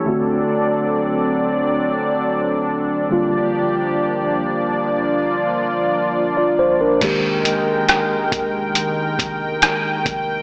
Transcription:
Already playing: A4
0.05 D3 F#3 A3 C4 D4 F#4 D5
3.09 D3 F3 G3 A#3 F4 G4 D5
4.84 F4
6.37 F4 D5
6.59 C5
6.81 D4 A#4
7.00 F1 D#3 G#3 A#3 G4 A#4 G5, kick, closed hi-hat, crash
7.45 closed hi-hat
7.89 cross-stick, closed hi-hat
8.32 F1, kick, closed hi-hat
8.75 closed hi-hat
9.19 F1, kick, closed hi-hat
9.62 cross-stick, closed hi-hat
10.06 F1, kick, closed hi-hat

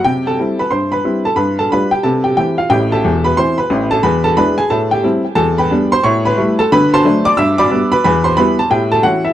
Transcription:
0.05 C3 G4 G5
0.27 A4 A5
0.39 G3 C4 E4
0.59 B4 B5
0.71 G2 C5 C6
0.92 B4 B5
1.05 G3 C4 E4
1.25 A4 A5
1.36 G2 B4 B5
1.59 A4 A5
1.72 G3 D4 F4 B4 B5
1.91 G4 G5
2.03 C3 A4 A5
2.24 G4 G5
2.37 E3 C4 E4 G4 G5
2.58 F4 F5
2.70 A1 A2 G4 G5
2.92 A4 E5 A5
3.05 E1 E2
3.24 B4 B5
3.37 E3 C4 E4 C5 C6
3.58 B4 B5
3.70 A1 A2
3.91 A4 A5
4.03 E2 B4 B5
4.24 A4 A5
4.37 G#3 D4 E4 B4 B5
4.58 G#4 G#5
4.70 A2 A4 A5
4.91 G4 G5
5.04 G3 C4 E4
5.35 E2 A4 A5
5.58 B4 G5 B5
5.71 G3 B3 D4
5.92 C5 C6
6.04 A2 C#5 C#6
6.25 B4 B5
6.37 G3 A3 E4
6.59 A4 A5
6.72 D3 B4 B5
6.94 C5 A5 C6
7.04 F#3 A3 D4
7.25 D5 D6
7.37 G2 E5 E6
7.58 D5 B5 D6
7.70 G3 B3 D4
7.92 B4 B5
8.04 E2 B4 B5
8.24 C5 C6
8.37 G3 B3 E4 B4 B5
8.59 A5
8.70 A2 G4 G5
8.92 A4 A5
9.03 E3 C#4 E4 F#4 F#5
9.25 E4 E5

